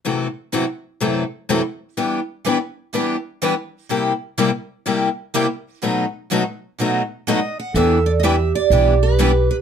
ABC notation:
X:1
M:4/4
L:1/16
Q:"Swing" 1/4=125
K:Em
V:1 name="Steel-string acoustic guitar"
z16 | z16 | z16 | z12 ^d2 f2 |
e2 d3/2 ^d/2 e2 =d4 B4 B2 |]
V:2 name="Clarinet"
z16 | z16 | z16 | z16 |
A4 G12 |]
V:3 name="Steel-string acoustic guitar"
[F,CEA]2 z2 [F,CEA]2 z2 [F,CEA]2 z2 [F,CEA]2 z2 | [E,G,DEB]2 z2 [E,G,DEB]2 z2 [E,G,DEB]2 z2 [E,G,DEB]2 z2 | [C,G,_B,EG]2 z2 [C,G,B,EG]2 z2 [C,G,B,EG]2 z2 [C,G,B,EG]2 z2 | [B,,F,A,^DFB]2 z2 [B,,F,A,DFB]2 z2 [B,,F,A,DFB]2 z2 [B,,F,A,DFB]2 z2 |
[E,G,DEB]2 z2 [E,G,DEB]2 z2 [E,G,DEB]2 z2 [E,G,DEB]2 z2 |]
V:4 name="Steel-string acoustic guitar"
[F,,C,E,A,EF]2 z2 [F,,C,E,A,EF]2 z2 [F,,C,E,A,EF]2 z2 [F,,C,E,A,EF]2 z2 | [E,B,DG]2 z2 [E,B,DG]2 z2 [E,B,DG]2 z2 [E,B,DG]2 z2 | [C,G,_B,EG]2 z2 [C,G,B,EG]2 z2 [C,G,B,EG]2 z2 [C,G,B,EG]2 z2 | [B,,F,A,^DF]2 z2 [B,,F,A,DF]2 z2 [B,,F,A,DF]2 z2 [B,,F,A,DF]2 z2 |
[E,B,DG]2 z2 [E,B,DG]2 z2 [E,B,DG]2 z2 [E,B,DG]2 z2 |]
V:5 name="Upright bass" clef=bass
z16 | z16 | z16 | z16 |
E,,8 B,,,8 |]